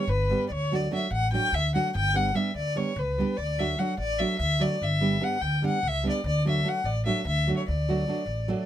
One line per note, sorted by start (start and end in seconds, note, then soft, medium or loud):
0.00 0.11 C#5 medium
0.07 0.33 G1 loud
0.07 0.46 B4 loud
0.30 0.45 G3 medium
0.30 0.46 B3 medium
0.30 0.46 D4 soft
0.30 0.47 G4 medium
0.48 0.86 D2 medium
0.48 0.76 C#5 loud
0.48 0.54 D5 medium
0.72 0.86 F#3 medium
0.72 0.87 A3 medium
0.72 0.87 D4 medium
0.72 0.87 F#4 medium
0.72 0.93 D5 medium
0.91 1.06 F#3 medium
0.91 1.06 A3 medium
0.91 1.07 D4 soft
0.91 1.07 F#4 medium
0.91 1.11 E5 medium
1.11 1.36 A1 medium
1.11 1.32 F#5 loud
1.32 1.48 F#3 medium
1.32 1.48 A3 medium
1.32 1.48 D4 medium
1.32 1.49 F#4 medium
1.32 1.56 G5 loud
1.52 1.77 D2 medium
1.52 1.74 E5 loud
1.74 1.89 F#3 medium
1.74 1.90 A3 soft
1.74 1.90 D4 medium
1.74 1.90 F#4 medium
1.74 1.93 F#5 medium
1.95 2.31 G1 loud
1.95 2.17 G5 loud
2.14 2.29 G3 medium
2.14 2.30 B3 medium
2.14 2.30 D4 medium
2.14 2.30 G4 medium
2.14 2.37 F#5 loud
2.34 2.49 G3 medium
2.34 2.50 B3 medium
2.34 2.50 D4 medium
2.34 2.50 G4 medium
2.34 2.54 E5 medium
2.55 2.79 D2 medium
2.55 2.79 D5 loud
2.75 2.91 G3 medium
2.75 2.91 B3 medium
2.75 2.91 D4 medium
2.75 2.92 G4 medium
2.75 3.00 C#5 medium
2.96 3.21 C#2 loud
2.96 3.38 B4 medium
3.18 3.33 G3 medium
3.18 3.34 B3 medium
3.18 3.34 D4 soft
3.18 3.34 G4 medium
3.37 3.74 D2 medium
3.37 3.61 D5 medium
3.58 3.73 F#3 medium
3.58 3.74 A3 medium
3.58 3.74 D4 medium
3.58 3.74 F#4 medium
3.58 3.81 E5 medium
3.78 3.93 F#3 medium
3.78 3.94 A3 medium
3.78 3.94 D4 medium
3.78 3.94 F#4 medium
3.78 3.98 F#5 medium
3.98 4.23 A1 medium
3.98 4.20 D5 medium
4.19 4.35 F#3 medium
4.19 4.35 A3 medium
4.19 4.35 D4 medium
4.19 4.36 F#4 medium
4.19 4.38 E5 medium
4.39 4.64 D2 loud
4.39 4.63 E5 loud
4.60 4.76 F#3 medium
4.60 4.76 A3 soft
4.60 4.77 D4 soft
4.60 4.77 F#4 medium
4.60 4.84 D5 medium
4.81 5.17 G1 medium
4.81 5.25 E5 medium
5.01 5.16 G3 medium
5.01 5.17 B3 medium
5.01 5.17 D4 soft
5.01 5.17 G4 medium
5.20 5.36 G3 medium
5.20 5.36 B3 medium
5.20 5.36 D4 medium
5.20 5.36 G4 medium
5.20 5.43 F#5 medium
5.41 5.66 D2 medium
5.41 5.63 G5 medium
5.62 5.78 G3 medium
5.62 5.78 B3 medium
5.62 5.78 D4 medium
5.62 5.79 G4 medium
5.66 5.89 F#5 medium
5.83 6.08 C#2 loud
5.88 6.07 E5 loud
6.03 6.19 G3 medium
6.03 6.19 B3 medium
6.03 6.20 D4 medium
6.03 6.20 G4 medium
6.09 6.25 D5 medium
6.24 6.60 D2 loud
6.24 6.45 D5 medium
6.45 6.60 F#3 medium
6.45 6.60 A3 medium
6.45 6.60 D4 medium
6.45 6.61 F#4 medium
6.49 6.70 E5 medium
6.63 6.79 F#3 medium
6.63 6.79 A3 medium
6.63 6.80 D4 medium
6.63 6.80 F#4 medium
6.69 6.87 F#5 medium
6.84 7.09 A1 medium
6.84 7.05 D5 medium
7.06 7.21 F#3 medium
7.06 7.21 A3 medium
7.06 7.21 D4 medium
7.06 7.21 F#4 medium
7.06 7.24 E5 medium
7.25 7.50 D2 loud
7.25 7.55 E5 medium
7.47 7.62 F#3 medium
7.47 7.63 A3 medium
7.47 7.63 D4 soft
7.47 7.63 F#4 medium
7.57 7.66 C#5 medium
7.68 8.03 D2 medium
7.68 8.64 D5 medium
7.89 8.03 F#3 medium
7.89 8.03 A3 medium
7.89 8.03 D4 medium
7.89 8.03 F#4 medium
8.08 8.22 F#3 medium
8.08 8.23 A3 medium
8.08 8.23 D4 medium
8.08 8.23 F#4 medium
8.26 8.51 A1 medium
8.48 8.63 F#3 medium
8.48 8.63 A3 medium
8.48 8.64 D4 medium
8.48 8.64 F#4 medium